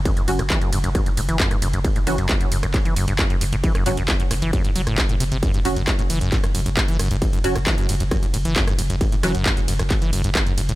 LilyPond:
<<
  \new Staff \with { instrumentName = "Synth stab" } { \time 4/4 \key fis \minor \tempo 4 = 134 r8 <fis cis' fis'>16 r2. r16 | r8 <fis cis' fis'>16 r2. r16 | r8 <fis cis' fis'>16 r2. r16 | r8 <fis cis' fis'>16 r2. r16 |
r8 <fis cis' fis'>16 r2. r16 | r8 <fis cis' fis'>16 r2. r16 | }
  \new Staff \with { instrumentName = "Acid bass" } { \clef bass \time 4/4 \key fis \minor fis,16 fis,16 fis,16 a,16 e16 fis,16 g,16 fis,16 fis,16 fis,16 a,16 e16 fis,16 g,16 fis,16 fis,16 | fis,16 a,16 e16 fis,16 r16 fis,16 fis,16 fis,16 a,16 e16 fis,16 g,16 fis,16 fis,16 fis,16 a,16 | e16 fis,16 g,16 fis,16 fis,16 fis,16 a,16 e16 fis,16 g,16 fis16 a,16 fis,,16 a,16 bis,16 bis,16 | fis,16 g,16 fis,16 fis,16 fis,16 a,16 e16 fis,16 g,16 fis,16 fis,16 fis,16 a,16 e16 fis,16 g,16 |
fis,16 fis,16 fis,16 a,16 e16 fis,16 g,16 fis,16 fis,16 fis,16 a,16 e16 fis,16 g,16 fis,16 fis,16 | fis,16 a,16 e16 fis,16 g,16 fis,16 fis,16 fis,16 a,16 e16 fis,16 g,16 fis,16 fis,16 fis,16 a,16 | }
  \new Staff \with { instrumentName = "Sub bass" } { \clef bass \time 4/4 \key fis \minor r8 fis,,16 fis,,16 r8 fis,,16 fis,,16 r8 fis,,16 fis,,16 r8 fis,,16 fis,,16 | r8 fis,,16 fis,,16 r8 fis,,16 fis,,16 r8 fis,,16 fis,,16 r8 fis,,16 fis,,16 | r8 fis,,16 fis,,16 r8 fis,,16 fis,,16 r8 fis,,16 fis,,16 r8 fis,,16 fis,,16 | r8 fis,,16 fis,,16 r8 fis,,16 fis,,16 r8 fis,,16 fis,,16 r8 fis,,16 fis,,16 |
r8 fis,,16 fis,,16 r8 fis,,16 fis,,16 r8 fis,,16 fis,,16 r8 fis,,16 fis,,16 | r8 fis,,16 fis,,16 r8 fis,,16 fis,,16 r8 fis,,16 fis,,16 r8 fis,,16 fis,,16 | }
  \new DrumStaff \with { instrumentName = "Drums" } \drummode { \time 4/4 <hh bd cymr>16 <hh cymr>16 <hho cymr>16 <hh cymr ss>16 <hc hh bd cymr>16 <hh cymr>16 <hho cymr>16 <hh cymr>16 <hh bd cymr ss>16 <hh cymr>16 <hho cymr>16 <hh cymr>16 <hc hh bd cymr>16 <hh cymr ss>16 <hho cymr>16 <hh cymr>16 | <hh bd cymr>16 <hh cymr>16 <hho cymr ss>16 <hh cymr>16 <hc hh bd cymr>16 <hh cymr>16 <hho cymr>16 <hh cymr ss>16 <hc hh bd cymr>16 <hh cymr>16 <hho cymr>16 <hh cymr>16 <hc hh bd cymr ss>16 <hh cymr>16 <hho cymr>16 <hh cymr>16 | <hh bd cymr>16 <hh cymr ss>16 <hho cymr>16 <hh cymr>16 <hc hh bd cymr>16 <hh cymr>16 <hho cymr ss>16 <hh cymr>16 <hh bd cymr>16 <hh cymr>16 <hho cymr>16 <hh cymr ss>16 <hc hh bd cymr>16 <hh cymr>16 <hho cymr>16 <hh cymr>16 | <hh bd cymr>16 <hh cymr>16 <hho cymr>16 <hh cymr>16 <hc hh bd cymr ss>16 <hh cymr>16 <hho cymr>16 <hh cymr>16 <hc hh bd cymr>16 <hh cymr ss>16 <hho cymr>16 <hh cymr>16 <hc hh bd cymr>16 <hh cymr>16 <hho cymr ss>16 <hh cymr>16 |
<hh bd cymr>16 <hh cymr>16 <hho cymr>16 <hh cymr ss>16 <hc hh bd cymr>16 <hh cymr>16 <hho cymr>16 <hh cymr>16 <hh bd cymr ss>16 <hh cymr>16 <hho cymr>16 <hh cymr>16 <hc hh bd cymr>16 <hh cymr ss>16 <hho cymr>16 <hh cymr>16 | <hh bd cymr>16 <hh cymr>16 <hho cymr ss>16 <hh cymr>16 <hc hh bd cymr>16 <hh cymr>16 <hho cymr>16 <hh cymr ss>16 <hc hh bd cymr>16 <hh cymr>16 <hho cymr>16 <hh cymr>16 <hc hh bd cymr ss>16 <hh cymr>16 <hho cymr>16 <hh cymr>16 | }
>>